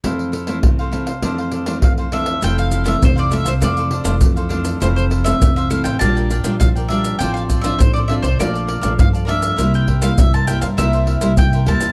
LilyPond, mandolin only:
\new Staff \with { instrumentName = "Mandolin" } { \time 4/4 \key f \major \tempo 4 = 100 r2. f''8 e''8 | g''16 f''8 e''16 c''16 d''16 e''16 c''16 d''4 r4 | c''16 c''8 e''8 e''16 f''16 g''16 a''4 f''8 e''8 | g''16 f''8 e''16 c''16 d''16 e''16 c''16 d''4 f''8 e''8~ |
e''16 g''8 f''16 e''16 a''16 g''16 f''16 e''4 g''8 a''8 | }